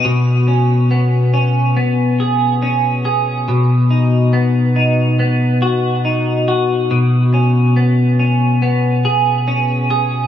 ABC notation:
X:1
M:4/4
L:1/8
Q:1/4=70
K:C#dor
V:1 name="Clean electric guitar"
B,, C B, C B, G C G | B,, D B, D B, F D F | B,, C B, C B, G C G |]